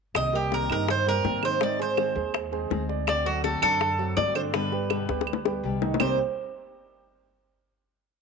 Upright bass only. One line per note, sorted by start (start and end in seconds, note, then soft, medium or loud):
0.15 0.66 C2 medium
0.70 1.21 G2 medium
1.24 2.10 G#2 medium
2.15 2.67 D#2 medium
2.70 3.56 D2 medium
3.62 4.13 F#2 medium
4.17 5.03 G2 medium
5.09 5.60 D2 medium
5.63 5.96 C2 medium
6.00 6.17 C2 medium